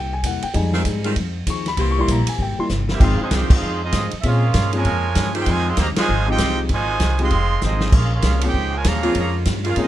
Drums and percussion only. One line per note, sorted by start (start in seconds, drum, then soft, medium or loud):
0.24 kick soft
0.24 hi-hat pedal medium
0.24 ride medium
0.43 ride medium
0.54 kick soft
0.54 ride medium
0.73 snare medium
0.85 kick soft
0.85 hi-hat pedal medium
0.85 ride medium
1.04 ride medium
1.16 kick soft
1.16 ride medium
1.47 kick soft
1.47 hi-hat pedal medium
1.47 ride medium
1.66 snare soft
1.66 ride medium
1.77 kick soft
1.77 ride medium
2.08 kick soft
2.08 hi-hat pedal medium
2.08 ride medium
2.27 ride medium
2.39 kick soft
2.69 snare medium
2.69 hi-hat pedal medium
2.89 snare medium
3.00 kick medium
3.00 crash medium
3.31 kick soft
3.31 snare medium
3.31 hi-hat pedal medium
3.31 ride medium
3.50 kick loud
3.50 crash loud
3.92 kick soft
3.92 snare medium
3.92 hi-hat pedal medium
3.92 ride medium
4.11 ride medium
4.23 kick soft
4.23 ride medium
4.54 kick soft
4.54 snare medium
4.54 hi-hat pedal medium
4.54 ride medium
4.73 ride medium
4.85 kick soft
4.85 ride medium
5.15 kick soft
5.15 snare medium
5.15 hi-hat pedal medium
5.15 ride medium
5.35 ride medium
5.46 kick soft
5.46 ride medium
5.77 kick soft
5.77 snare medium
5.77 hi-hat pedal medium
5.77 ride medium
5.96 snare loud
5.96 ride medium
6.38 kick soft
6.38 snare medium
6.38 hi-hat pedal medium
6.38 ride medium
6.69 kick soft
6.69 ride medium
7.00 kick soft
7.00 snare medium
7.00 hi-hat pedal medium
7.00 ride medium
7.19 ride medium
7.31 kick soft
7.31 ride medium
7.61 snare medium
7.61 hi-hat pedal medium
7.80 snare medium
7.92 kick medium
7.92 crash medium
8.22 kick soft
8.22 snare medium
8.22 hi-hat pedal medium
8.22 ride medium
8.41 ride medium
8.54 kick soft
8.84 kick soft
8.84 snare medium
8.84 hi-hat pedal medium
8.84 ride medium
9.03 ride medium
9.15 kick soft
9.15 ride medium
9.45 kick soft
9.45 snare medium
9.45 hi-hat pedal medium
9.45 ride medium
9.65 ride medium
9.76 kick soft
9.76 ride medium